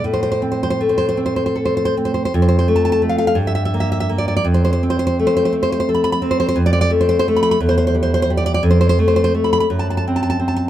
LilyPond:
\new Staff \with { instrumentName = "Nylon-string guitar" } { \time 6/8 \key f \lydian \tempo 4. = 57 << { r32 c''32 c''32 c''32 r32 c''32 c''32 c''32 r32 c''32 c''32 c''32 r32 c''32 c''32 c''32 r32 c''32 c''32 c''32 r32 c''32 c''32 c''32 | r32 c''32 c''32 c''32 r32 a''32 a''32 a''32 r32 f''32 f''32 f''32 r32 e''32 e''32 e''32 r32 e''32 e''32 e''32 r32 d''32 d''32 d''32 | r32 c''32 c''32 c''32 r32 c''32 c''32 c''32 r32 c''32 c''32 c''32 r32 c''32 c''32 c''32 r32 b''32 b''32 b''32 r32 c''32 c''32 c''32 | r32 d''32 d''32 d''32 r32 c''32 c''32 c''32 r32 b''32 b''32 b''32 r32 c''32 c''32 c''32 r32 c''32 c''32 c''32 r32 d''32 d''32 d''32 |
r32 c''32 c''32 c''32 r32 c''32 c''32 c''32 r32 b''32 b''32 b''32 r32 a''32 a''32 a''32 r32 a''32 a''32 a''32 r32 a''32 a''32 r32 | } \\ { a,8 c'8 a8 c'8 a'8 c'8 | f,8 a8 a8 g,8 bes8 bes8 | f,8 c'8 a8 c'8 a'8 c'8 | f,8 a8 a8 e,8 g8 g8 |
f,8 a8 a8 fis,8 c'8 c'8 | } >> }